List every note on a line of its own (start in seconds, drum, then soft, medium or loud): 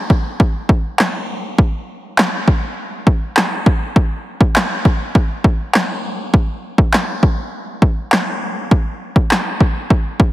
0.10 kick medium
0.40 kick medium
0.69 kick medium
0.99 snare medium
0.99 clap loud
1.58 kick loud
2.18 snare medium
2.18 clap loud
2.48 kick medium
3.07 kick medium
3.37 snare medium
3.37 clap loud
3.66 kick medium
3.96 kick loud
4.41 kick medium
4.56 snare medium
4.56 clap loud
4.85 kick medium
5.15 kick medium
5.44 kick medium
5.74 snare medium
5.74 clap loud
6.34 kick loud
6.78 kick medium
6.93 snare medium
6.93 clap loud
7.23 kick medium
7.82 kick medium
8.12 snare medium
8.12 clap loud
8.71 kick loud
9.16 kick medium
9.31 snare medium
9.31 clap loud
9.61 kick medium
9.90 kick medium
10.20 kick medium